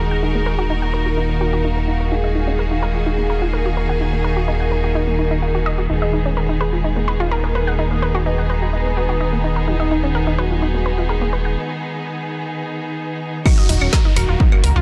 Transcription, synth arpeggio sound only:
0.11 0.18 F#5 medium
0.23 0.30 D#4 medium
0.35 0.46 A#3 medium
0.46 0.54 A#4 loud
0.59 0.66 F#4 loud
0.70 0.81 D#4 loud
0.82 0.89 F#5 medium
0.94 1.01 A#4 loud
1.06 1.10 F#4 medium
1.17 1.25 D#4 medium
1.29 1.40 A#3 medium
1.41 1.49 F#4 loud
1.53 1.60 F#4 loud
1.65 1.72 D#4 loud
1.77 1.81 A#3 medium
1.88 1.93 D#4 medium
2.00 2.07 A#4 medium
2.12 2.23 D#4 medium
2.24 2.31 D#5 medium
2.35 2.43 D#4 medium
2.47 2.58 C#4 medium
2.59 2.70 A#4 loud
2.71 2.75 D#4 medium
2.83 2.90 A#4 loud
2.95 3.02 F4 medium
3.06 3.11 D#4 medium
3.18 3.29 A#3 medium
3.30 3.37 A#4 loud
3.42 3.49 F4 loud
3.53 3.65 A#4 loud
3.66 3.73 F#4 loud
3.77 3.85 A#4 loud
3.89 3.96 F#5 medium
4.01 4.08 D#4 medium
4.13 4.24 A#3 medium
4.24 4.32 A#4 loud
4.37 4.44 F#4 loud
4.48 4.59 D#4 loud
4.60 4.67 F#5 medium
4.72 4.79 A#4 loud
4.84 4.88 F#4 medium
4.95 5.03 D#4 medium
5.07 5.18 A#3 medium
5.19 5.23 D#4 medium
5.31 5.38 D#4 medium
5.42 5.54 F4 medium
5.55 5.62 F#4 medium
5.66 5.71 D#5 loud
5.78 5.83 F#4 medium
5.90 6.01 D#4 medium
6.02 6.09 D#5 medium
6.13 6.21 D#4 medium
6.26 6.36 C#4 medium
6.37 6.48 A#4 loud
6.49 6.53 D#4 medium
6.61 6.68 B4 loud
6.73 6.80 F4 medium
6.84 6.89 D#4 medium
6.96 7.07 A#3 medium
7.08 7.15 B4 loud
7.20 7.27 F4 loud
7.32 7.43 A#4 loud
7.44 7.54 A#3 loud
7.55 7.63 B4 loud
7.67 7.74 F#5 medium
7.79 7.86 D#4 medium
7.91 8.02 A#3 medium
8.02 8.10 B4 loud
8.15 8.22 F#4 loud
8.26 8.37 D#4 loud
8.38 8.45 F#5 medium
8.50 8.57 B4 loud
8.62 8.66 F#4 medium
8.73 8.81 D#4 medium
8.85 8.96 A#3 medium
8.97 9.04 F#4 loud
9.09 9.16 F#4 loud
9.21 9.28 D#4 loud
9.33 9.37 A#3 medium
9.44 9.49 D#4 medium
9.56 9.63 A#4 medium
9.68 9.79 D#4 medium
9.80 9.87 D#5 medium
9.91 9.99 D#4 medium
10.03 10.14 C#4 medium
10.15 10.26 A#4 loud
10.27 10.31 D#4 medium
10.39 10.46 B4 loud
10.51 10.58 F4 medium
10.62 10.67 D#4 medium
10.74 10.85 A#3 medium
10.86 10.93 B4 loud
10.98 11.05 F4 loud
11.09 11.21 A#4 loud
11.22 11.32 A#3 loud
11.33 11.41 B4 loud
11.45 11.52 F#5 medium
13.46 13.57 D#4 medium
13.58 13.65 D#5 medium
13.69 13.77 D#4 medium
13.81 13.92 C#4 medium
13.93 14.04 A#4 loud
14.05 14.09 D#4 medium
14.16 14.24 A#4 loud
14.29 14.36 F4 medium
14.40 14.45 D#4 medium
14.52 14.63 A#3 medium
14.64 14.71 A#4 loud
14.76 14.82 F4 loud

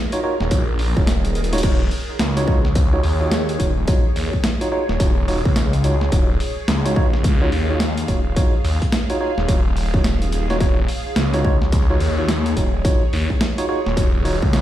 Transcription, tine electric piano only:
0.13 0.19 D#4 loud
0.13 0.19 F4 medium
0.13 0.19 F#4 medium
0.13 0.19 C#5 loud
0.24 0.34 D#4 medium
0.24 0.34 F4 medium
0.24 0.34 F#4 medium
0.24 0.34 C#5 loud
0.52 0.62 D#4 medium
0.52 0.62 F4 medium
0.52 0.62 F#4 medium
0.52 0.62 C#5 medium
0.97 1.07 D#4 medium
0.97 1.07 F4 medium
0.97 1.07 F#4 medium
0.97 1.07 C#5 medium
1.53 1.59 D#4 loud
1.53 1.59 F4 medium
1.53 1.59 F#4 medium
1.53 1.59 C#5 loud
1.64 1.80 D#4 medium
1.64 1.80 F4 medium
1.64 1.80 F#4 medium
1.64 1.80 C#5 medium
2.37 2.46 D#4 medium
2.37 2.46 F4 medium
2.37 2.46 F#4 medium
2.37 2.46 C#5 loud
2.48 2.58 D#4 medium
2.48 2.58 F4 medium
2.48 2.58 F#4 medium
2.48 2.58 C#5 loud
2.93 2.99 D#4 medium
2.93 2.99 F4 medium
2.93 2.99 F#4 medium
2.93 2.99 C#5 loud
3.21 3.31 D#4 medium
3.21 3.31 F4 medium
3.21 3.31 F#4 medium
3.21 3.31 C#5 medium
3.59 3.70 D#4 medium
3.59 3.70 F4 medium
3.59 3.70 F#4 medium
3.59 3.70 C#5 medium
3.88 4.05 D#4 medium
3.88 4.05 F4 medium
3.88 4.05 F#4 medium
3.88 4.05 C#5 loud
4.61 4.68 D#4 loud
4.61 4.68 F4 medium
4.61 4.68 F#4 medium
4.61 4.68 C#5 loud
4.72 4.82 D#4 medium
4.72 4.82 F4 medium
4.72 4.82 F#4 medium
4.72 4.82 C#5 loud
5.00 5.10 D#4 medium
5.00 5.10 F4 medium
5.00 5.10 F#4 medium
5.00 5.10 C#5 medium
5.28 5.39 D#4 medium
5.28 5.39 F4 medium
5.28 5.39 F#4 medium
5.28 5.39 C#5 loud
5.84 5.95 D#4 medium
5.84 5.95 F4 medium
5.84 5.95 F#4 medium
5.84 5.95 C#5 medium
6.12 6.29 D#4 medium
6.12 6.29 F4 medium
6.12 6.29 F#4 medium
6.12 6.29 C#5 medium
6.85 6.94 D#4 loud
6.85 6.95 F4 medium
6.85 6.94 F#4 medium
6.85 6.95 C#5 loud
6.96 7.07 D#4 medium
6.96 7.07 F4 medium
6.96 7.07 F#4 medium
6.96 7.07 C#5 loud
7.42 7.48 D#4 medium
7.42 7.48 F4 medium
7.42 7.48 F#4 medium
7.42 7.48 C#5 loud
7.70 7.80 D#4 medium
7.70 7.80 F4 medium
7.70 7.80 F#4 medium
7.70 7.80 C#5 medium
8.08 8.19 D#4 medium
8.08 8.19 F4 medium
8.08 8.19 F#4 medium
8.08 8.19 C#5 medium
8.36 8.53 D#4 medium
8.36 8.53 F4 medium
8.36 8.53 F#4 medium
8.36 8.53 C#5 loud
9.10 9.16 D#4 loud
9.10 9.16 F4 medium
9.10 9.16 F#4 medium
9.10 9.16 C#5 loud
9.21 9.31 D#4 medium
9.21 9.31 F4 medium
9.21 9.31 F#4 medium
9.21 9.31 C#5 loud
9.48 9.59 D#4 medium
9.48 9.59 F4 medium
9.48 9.59 F#4 medium
9.48 9.59 C#5 medium
9.94 10.04 D#4 medium
9.94 10.04 F4 medium
9.94 10.04 F#4 medium
9.94 10.04 C#5 medium
10.50 10.57 D#4 loud
10.50 10.57 F4 medium
10.50 10.57 F#4 medium
10.50 10.57 C#5 loud
10.61 10.78 D#4 medium
10.61 10.78 F4 medium
10.61 10.78 F#4 medium
10.61 10.78 C#5 medium
11.34 11.43 D#4 medium
11.34 11.43 F4 medium
11.34 11.43 F#4 medium
11.34 11.43 C#5 loud
11.45 11.55 D#4 medium
11.45 11.55 F4 medium
11.45 11.55 F#4 medium
11.45 11.55 C#5 loud
11.90 11.97 D#4 medium
11.90 11.97 F4 medium
11.90 11.97 F#4 medium
11.90 11.97 C#5 loud
12.18 12.29 D#4 medium
12.18 12.29 F4 medium
12.18 12.29 F#4 medium
12.18 12.29 C#5 medium
12.57 12.67 D#4 medium
12.57 12.67 F4 medium
12.57 12.67 F#4 medium
12.57 12.67 C#5 medium
12.85 13.02 D#4 medium
12.85 13.02 F4 medium
12.85 13.02 F#4 medium
12.85 13.02 C#5 loud
13.58 13.65 D#4 loud
13.58 13.65 F4 medium
13.58 13.65 F#4 medium
13.58 13.65 C#5 loud
13.69 13.80 D#4 medium
13.69 13.80 F4 medium
13.69 13.79 F#4 medium
13.69 13.79 C#5 loud
13.97 14.07 D#4 medium
13.97 14.08 F4 medium
13.97 14.07 F#4 medium
13.97 14.07 C#5 loud
14.25 14.36 D#4 medium
14.25 14.35 F4 medium
14.25 14.36 F#4 medium
14.25 14.35 C#5 loud

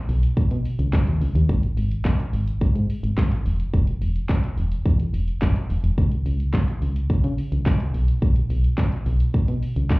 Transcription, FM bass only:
0.09 0.26 B1 loud
0.37 0.43 B2 soft
0.51 0.60 B2 loud
0.79 0.88 C#2 medium
1.07 1.16 D#2 loud
1.21 1.30 C#2 medium
1.35 1.44 D#2 loud
1.49 1.67 G#1 loud
1.77 1.95 G#1 loud
2.33 2.51 G#1 loud
2.61 2.67 G#2 soft
2.75 2.84 G#2 medium
3.03 3.12 G#1 medium
3.18 3.35 G#1 loud
3.46 3.63 E1 loud
3.74 3.91 E1 loud
4.02 4.19 E1 medium
4.58 4.75 E1 medium
4.86 5.03 E2 loud
5.14 5.31 E1 medium
5.42 5.51 F#1 medium
5.70 5.78 E1 medium
5.84 5.92 E1 medium
5.98 6.15 C#2 loud
6.26 6.43 C#2 loud
6.82 6.99 C#2 medium
7.10 7.15 C#3 soft
7.24 7.33 C#3 loud
7.52 7.61 C#2 medium
7.66 7.84 C#2 loud
7.94 8.11 B1 loud
8.22 8.39 B1 loud
8.50 8.68 B1 loud
9.06 9.24 B1 medium
9.34 9.40 B2 medium
9.48 9.57 B2 loud
9.76 9.85 C#2 medium

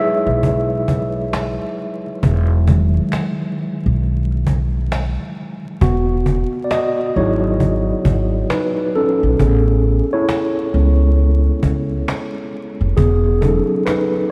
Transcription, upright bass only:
0.27 1.57 B1 medium
2.23 2.98 E1 loud
3.86 5.16 B1 medium
5.81 6.42 E1 loud
7.16 7.91 G#1 medium
8.05 8.42 G#1 medium
9.23 9.37 A#1 medium
9.40 10.00 A1 medium
10.74 11.48 C#2 medium
11.63 12.00 C#2 medium
12.81 12.95 F1 medium
12.98 13.58 E1 loud

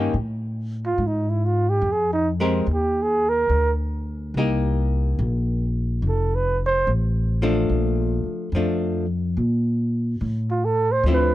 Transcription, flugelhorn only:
0.86 1.09 F4 medium
1.07 1.31 D#4 medium
1.30 1.47 E4 medium
1.45 1.71 F4 medium
1.69 1.94 G4 medium
1.92 2.12 G#4 medium
2.13 2.30 D#4 medium
2.74 3.04 G4 medium
3.03 3.31 G#4 medium
3.29 3.73 A#4 loud
6.08 6.37 A4 medium
6.35 6.61 B4 medium
6.66 6.92 C5 medium
10.51 10.67 F4 medium
10.65 10.94 A4 medium
10.92 11.06 C5 loud
11.13 11.35 B4 medium

